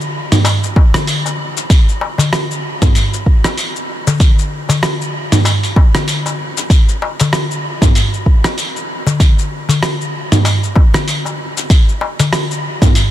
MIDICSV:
0, 0, Header, 1, 3, 480
1, 0, Start_track
1, 0, Tempo, 625000
1, 1306, Time_signature, 4, 2, 24, 8
1, 10068, End_track
2, 0, Start_track
2, 0, Title_t, "Darbuka"
2, 342, Note_on_c, 9, 63, 75
2, 419, Note_off_c, 9, 63, 0
2, 586, Note_on_c, 9, 63, 64
2, 663, Note_off_c, 9, 63, 0
2, 727, Note_on_c, 9, 64, 84
2, 803, Note_off_c, 9, 64, 0
2, 964, Note_on_c, 9, 62, 54
2, 1041, Note_off_c, 9, 62, 0
2, 1546, Note_on_c, 9, 63, 59
2, 1623, Note_off_c, 9, 63, 0
2, 1675, Note_on_c, 9, 62, 37
2, 1677, Note_on_c, 9, 64, 88
2, 1752, Note_off_c, 9, 62, 0
2, 1754, Note_off_c, 9, 64, 0
2, 2649, Note_on_c, 9, 63, 82
2, 2725, Note_off_c, 9, 63, 0
2, 3128, Note_on_c, 9, 64, 94
2, 3205, Note_off_c, 9, 64, 0
2, 3600, Note_on_c, 9, 62, 37
2, 3603, Note_on_c, 9, 64, 95
2, 3676, Note_off_c, 9, 62, 0
2, 3680, Note_off_c, 9, 64, 0
2, 4185, Note_on_c, 9, 63, 59
2, 4262, Note_off_c, 9, 63, 0
2, 4427, Note_on_c, 9, 63, 67
2, 4504, Note_off_c, 9, 63, 0
2, 4574, Note_on_c, 9, 64, 90
2, 4651, Note_off_c, 9, 64, 0
2, 4806, Note_on_c, 9, 62, 51
2, 4883, Note_off_c, 9, 62, 0
2, 5393, Note_on_c, 9, 63, 62
2, 5469, Note_off_c, 9, 63, 0
2, 5527, Note_on_c, 9, 62, 39
2, 5536, Note_on_c, 9, 64, 94
2, 5604, Note_off_c, 9, 62, 0
2, 5613, Note_off_c, 9, 64, 0
2, 6484, Note_on_c, 9, 63, 79
2, 6560, Note_off_c, 9, 63, 0
2, 6962, Note_on_c, 9, 64, 91
2, 7039, Note_off_c, 9, 64, 0
2, 7440, Note_on_c, 9, 62, 34
2, 7440, Note_on_c, 9, 64, 82
2, 7517, Note_off_c, 9, 62, 0
2, 7517, Note_off_c, 9, 64, 0
2, 8024, Note_on_c, 9, 63, 59
2, 8101, Note_off_c, 9, 63, 0
2, 8260, Note_on_c, 9, 63, 57
2, 8337, Note_off_c, 9, 63, 0
2, 8400, Note_on_c, 9, 64, 76
2, 8477, Note_off_c, 9, 64, 0
2, 8643, Note_on_c, 9, 62, 49
2, 8720, Note_off_c, 9, 62, 0
2, 9225, Note_on_c, 9, 63, 59
2, 9302, Note_off_c, 9, 63, 0
2, 9367, Note_on_c, 9, 64, 84
2, 9368, Note_on_c, 9, 62, 36
2, 9443, Note_off_c, 9, 64, 0
2, 9445, Note_off_c, 9, 62, 0
2, 10068, End_track
3, 0, Start_track
3, 0, Title_t, "Drums"
3, 9, Note_on_c, 9, 82, 29
3, 86, Note_off_c, 9, 82, 0
3, 245, Note_on_c, 9, 45, 75
3, 245, Note_on_c, 9, 46, 47
3, 248, Note_on_c, 9, 82, 65
3, 322, Note_off_c, 9, 45, 0
3, 322, Note_off_c, 9, 46, 0
3, 325, Note_off_c, 9, 82, 0
3, 345, Note_on_c, 9, 46, 69
3, 348, Note_on_c, 9, 82, 58
3, 421, Note_off_c, 9, 46, 0
3, 425, Note_off_c, 9, 82, 0
3, 487, Note_on_c, 9, 82, 34
3, 564, Note_off_c, 9, 82, 0
3, 585, Note_on_c, 9, 36, 102
3, 662, Note_off_c, 9, 36, 0
3, 723, Note_on_c, 9, 37, 85
3, 723, Note_on_c, 9, 46, 46
3, 727, Note_on_c, 9, 82, 72
3, 800, Note_off_c, 9, 37, 0
3, 800, Note_off_c, 9, 46, 0
3, 803, Note_off_c, 9, 82, 0
3, 825, Note_on_c, 9, 46, 66
3, 828, Note_on_c, 9, 82, 56
3, 902, Note_off_c, 9, 46, 0
3, 905, Note_off_c, 9, 82, 0
3, 968, Note_on_c, 9, 82, 34
3, 1045, Note_off_c, 9, 82, 0
3, 1207, Note_on_c, 9, 82, 68
3, 1284, Note_off_c, 9, 82, 0
3, 1305, Note_on_c, 9, 36, 122
3, 1306, Note_on_c, 9, 46, 63
3, 1309, Note_on_c, 9, 82, 59
3, 1382, Note_off_c, 9, 36, 0
3, 1383, Note_off_c, 9, 46, 0
3, 1386, Note_off_c, 9, 82, 0
3, 1449, Note_on_c, 9, 82, 36
3, 1525, Note_off_c, 9, 82, 0
3, 1685, Note_on_c, 9, 46, 30
3, 1688, Note_on_c, 9, 82, 71
3, 1762, Note_off_c, 9, 46, 0
3, 1765, Note_off_c, 9, 82, 0
3, 1787, Note_on_c, 9, 37, 77
3, 1787, Note_on_c, 9, 46, 64
3, 1790, Note_on_c, 9, 82, 58
3, 1863, Note_off_c, 9, 37, 0
3, 1863, Note_off_c, 9, 46, 0
3, 1867, Note_off_c, 9, 82, 0
3, 1929, Note_on_c, 9, 82, 33
3, 2006, Note_off_c, 9, 82, 0
3, 2164, Note_on_c, 9, 45, 74
3, 2164, Note_on_c, 9, 46, 44
3, 2165, Note_on_c, 9, 36, 120
3, 2168, Note_on_c, 9, 82, 71
3, 2241, Note_off_c, 9, 36, 0
3, 2241, Note_off_c, 9, 45, 0
3, 2241, Note_off_c, 9, 46, 0
3, 2244, Note_off_c, 9, 82, 0
3, 2266, Note_on_c, 9, 46, 68
3, 2270, Note_on_c, 9, 82, 56
3, 2343, Note_off_c, 9, 46, 0
3, 2346, Note_off_c, 9, 82, 0
3, 2408, Note_on_c, 9, 82, 33
3, 2485, Note_off_c, 9, 82, 0
3, 2506, Note_on_c, 9, 36, 62
3, 2583, Note_off_c, 9, 36, 0
3, 2645, Note_on_c, 9, 37, 75
3, 2645, Note_on_c, 9, 46, 43
3, 2648, Note_on_c, 9, 82, 72
3, 2722, Note_off_c, 9, 37, 0
3, 2722, Note_off_c, 9, 46, 0
3, 2725, Note_off_c, 9, 82, 0
3, 2746, Note_on_c, 9, 46, 65
3, 2749, Note_on_c, 9, 82, 57
3, 2822, Note_off_c, 9, 46, 0
3, 2826, Note_off_c, 9, 82, 0
3, 2888, Note_on_c, 9, 82, 36
3, 2964, Note_off_c, 9, 82, 0
3, 3128, Note_on_c, 9, 82, 70
3, 3205, Note_off_c, 9, 82, 0
3, 3226, Note_on_c, 9, 36, 127
3, 3226, Note_on_c, 9, 46, 62
3, 3229, Note_on_c, 9, 82, 59
3, 3303, Note_off_c, 9, 36, 0
3, 3303, Note_off_c, 9, 46, 0
3, 3306, Note_off_c, 9, 82, 0
3, 3369, Note_on_c, 9, 82, 34
3, 3445, Note_off_c, 9, 82, 0
3, 3606, Note_on_c, 9, 46, 28
3, 3610, Note_on_c, 9, 82, 71
3, 3683, Note_off_c, 9, 46, 0
3, 3686, Note_off_c, 9, 82, 0
3, 3707, Note_on_c, 9, 37, 78
3, 3707, Note_on_c, 9, 46, 59
3, 3711, Note_on_c, 9, 82, 55
3, 3784, Note_off_c, 9, 37, 0
3, 3784, Note_off_c, 9, 46, 0
3, 3787, Note_off_c, 9, 82, 0
3, 3851, Note_on_c, 9, 82, 29
3, 3928, Note_off_c, 9, 82, 0
3, 4087, Note_on_c, 9, 45, 71
3, 4087, Note_on_c, 9, 46, 40
3, 4090, Note_on_c, 9, 82, 67
3, 4163, Note_off_c, 9, 45, 0
3, 4163, Note_off_c, 9, 46, 0
3, 4167, Note_off_c, 9, 82, 0
3, 4188, Note_on_c, 9, 46, 66
3, 4191, Note_on_c, 9, 82, 57
3, 4265, Note_off_c, 9, 46, 0
3, 4268, Note_off_c, 9, 82, 0
3, 4327, Note_on_c, 9, 46, 27
3, 4330, Note_on_c, 9, 82, 34
3, 4404, Note_off_c, 9, 46, 0
3, 4407, Note_off_c, 9, 82, 0
3, 4426, Note_on_c, 9, 36, 101
3, 4503, Note_off_c, 9, 36, 0
3, 4566, Note_on_c, 9, 37, 77
3, 4566, Note_on_c, 9, 46, 44
3, 4570, Note_on_c, 9, 82, 70
3, 4643, Note_off_c, 9, 37, 0
3, 4643, Note_off_c, 9, 46, 0
3, 4646, Note_off_c, 9, 82, 0
3, 4667, Note_on_c, 9, 46, 61
3, 4670, Note_on_c, 9, 82, 58
3, 4744, Note_off_c, 9, 46, 0
3, 4747, Note_off_c, 9, 82, 0
3, 4809, Note_on_c, 9, 82, 37
3, 4885, Note_off_c, 9, 82, 0
3, 5049, Note_on_c, 9, 82, 69
3, 5125, Note_off_c, 9, 82, 0
3, 5145, Note_on_c, 9, 36, 124
3, 5147, Note_on_c, 9, 46, 60
3, 5150, Note_on_c, 9, 82, 56
3, 5222, Note_off_c, 9, 36, 0
3, 5224, Note_off_c, 9, 46, 0
3, 5227, Note_off_c, 9, 82, 0
3, 5289, Note_on_c, 9, 82, 31
3, 5366, Note_off_c, 9, 82, 0
3, 5526, Note_on_c, 9, 46, 29
3, 5530, Note_on_c, 9, 82, 72
3, 5603, Note_off_c, 9, 46, 0
3, 5606, Note_off_c, 9, 82, 0
3, 5628, Note_on_c, 9, 37, 74
3, 5628, Note_on_c, 9, 46, 63
3, 5631, Note_on_c, 9, 82, 56
3, 5704, Note_off_c, 9, 37, 0
3, 5704, Note_off_c, 9, 46, 0
3, 5708, Note_off_c, 9, 82, 0
3, 5770, Note_on_c, 9, 82, 31
3, 5847, Note_off_c, 9, 82, 0
3, 6004, Note_on_c, 9, 36, 111
3, 6006, Note_on_c, 9, 45, 76
3, 6006, Note_on_c, 9, 46, 42
3, 6009, Note_on_c, 9, 82, 62
3, 6081, Note_off_c, 9, 36, 0
3, 6082, Note_off_c, 9, 45, 0
3, 6082, Note_off_c, 9, 46, 0
3, 6086, Note_off_c, 9, 82, 0
3, 6108, Note_on_c, 9, 46, 64
3, 6111, Note_on_c, 9, 82, 57
3, 6185, Note_off_c, 9, 46, 0
3, 6188, Note_off_c, 9, 82, 0
3, 6249, Note_on_c, 9, 82, 30
3, 6326, Note_off_c, 9, 82, 0
3, 6345, Note_on_c, 9, 36, 62
3, 6422, Note_off_c, 9, 36, 0
3, 6485, Note_on_c, 9, 37, 78
3, 6485, Note_on_c, 9, 46, 41
3, 6488, Note_on_c, 9, 82, 65
3, 6561, Note_off_c, 9, 37, 0
3, 6561, Note_off_c, 9, 46, 0
3, 6565, Note_off_c, 9, 82, 0
3, 6587, Note_on_c, 9, 46, 61
3, 6590, Note_on_c, 9, 82, 55
3, 6664, Note_off_c, 9, 46, 0
3, 6667, Note_off_c, 9, 82, 0
3, 6729, Note_on_c, 9, 82, 34
3, 6806, Note_off_c, 9, 82, 0
3, 6968, Note_on_c, 9, 82, 67
3, 7045, Note_off_c, 9, 82, 0
3, 7065, Note_on_c, 9, 36, 115
3, 7067, Note_on_c, 9, 46, 60
3, 7070, Note_on_c, 9, 82, 52
3, 7142, Note_off_c, 9, 36, 0
3, 7144, Note_off_c, 9, 46, 0
3, 7147, Note_off_c, 9, 82, 0
3, 7208, Note_on_c, 9, 82, 32
3, 7285, Note_off_c, 9, 82, 0
3, 7445, Note_on_c, 9, 46, 31
3, 7449, Note_on_c, 9, 82, 64
3, 7522, Note_off_c, 9, 46, 0
3, 7525, Note_off_c, 9, 82, 0
3, 7546, Note_on_c, 9, 37, 69
3, 7546, Note_on_c, 9, 46, 66
3, 7549, Note_on_c, 9, 82, 49
3, 7623, Note_off_c, 9, 37, 0
3, 7623, Note_off_c, 9, 46, 0
3, 7626, Note_off_c, 9, 82, 0
3, 7688, Note_on_c, 9, 82, 32
3, 7765, Note_off_c, 9, 82, 0
3, 7926, Note_on_c, 9, 45, 82
3, 7926, Note_on_c, 9, 46, 43
3, 7929, Note_on_c, 9, 82, 62
3, 8002, Note_off_c, 9, 45, 0
3, 8002, Note_off_c, 9, 46, 0
3, 8006, Note_off_c, 9, 82, 0
3, 8026, Note_on_c, 9, 46, 66
3, 8029, Note_on_c, 9, 82, 52
3, 8103, Note_off_c, 9, 46, 0
3, 8106, Note_off_c, 9, 82, 0
3, 8168, Note_on_c, 9, 82, 28
3, 8245, Note_off_c, 9, 82, 0
3, 8265, Note_on_c, 9, 36, 99
3, 8342, Note_off_c, 9, 36, 0
3, 8405, Note_on_c, 9, 37, 70
3, 8405, Note_on_c, 9, 46, 42
3, 8408, Note_on_c, 9, 82, 70
3, 8481, Note_off_c, 9, 37, 0
3, 8481, Note_off_c, 9, 46, 0
3, 8485, Note_off_c, 9, 82, 0
3, 8506, Note_on_c, 9, 46, 65
3, 8510, Note_on_c, 9, 82, 53
3, 8583, Note_off_c, 9, 46, 0
3, 8586, Note_off_c, 9, 82, 0
3, 8648, Note_on_c, 9, 82, 33
3, 8725, Note_off_c, 9, 82, 0
3, 8889, Note_on_c, 9, 82, 63
3, 8965, Note_off_c, 9, 82, 0
3, 8985, Note_on_c, 9, 36, 110
3, 8986, Note_on_c, 9, 46, 65
3, 8989, Note_on_c, 9, 82, 53
3, 9062, Note_off_c, 9, 36, 0
3, 9062, Note_off_c, 9, 46, 0
3, 9066, Note_off_c, 9, 82, 0
3, 9128, Note_on_c, 9, 82, 31
3, 9205, Note_off_c, 9, 82, 0
3, 9365, Note_on_c, 9, 46, 35
3, 9369, Note_on_c, 9, 82, 65
3, 9442, Note_off_c, 9, 46, 0
3, 9445, Note_off_c, 9, 82, 0
3, 9466, Note_on_c, 9, 37, 73
3, 9466, Note_on_c, 9, 46, 65
3, 9469, Note_on_c, 9, 82, 52
3, 9543, Note_off_c, 9, 37, 0
3, 9543, Note_off_c, 9, 46, 0
3, 9546, Note_off_c, 9, 82, 0
3, 9609, Note_on_c, 9, 82, 29
3, 9685, Note_off_c, 9, 82, 0
3, 9844, Note_on_c, 9, 36, 105
3, 9846, Note_on_c, 9, 45, 87
3, 9846, Note_on_c, 9, 46, 45
3, 9849, Note_on_c, 9, 82, 68
3, 9921, Note_off_c, 9, 36, 0
3, 9923, Note_off_c, 9, 45, 0
3, 9923, Note_off_c, 9, 46, 0
3, 9926, Note_off_c, 9, 82, 0
3, 9948, Note_on_c, 9, 46, 69
3, 9951, Note_on_c, 9, 82, 54
3, 10024, Note_off_c, 9, 46, 0
3, 10028, Note_off_c, 9, 82, 0
3, 10068, End_track
0, 0, End_of_file